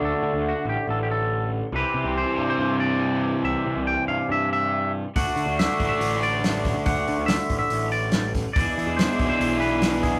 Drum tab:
HH |--------|--------|--------|oooooooo|
SD |--------|--------|--------|--o---oo|
BD |--------|--------|--------|o--o---o|

HH |oooooooo|oooooooo|
SD |--o---oo|--o---oo|
BD |o--o---o|o--o---o|